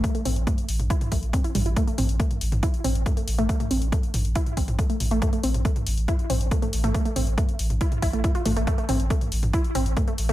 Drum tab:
HH |xxoxxxoxxxoxxxox|xxoxxxoxxxoxxxox|xxoxxxoxxxoxxxox|xxoxxxoxxxoxxxox|
T2 |--o-o--o-o--o-o-|o-o--o-o--o-o--o|-o--o-o--o-o--o-|o--o-o--o-o--o-o|
BD |o---o---o-o-o---|o---o---o---o---|o---o---o-o-o---|o---o---o---o---|

HH |xxoxxxoxxxoxxxox|xxoxxxoxxxoxxxox|
T2 |--o-o--o-o--o-o-|o-o--o-o--o-o--o|
BD |o---o---o-o-o---|o---o---o---o---|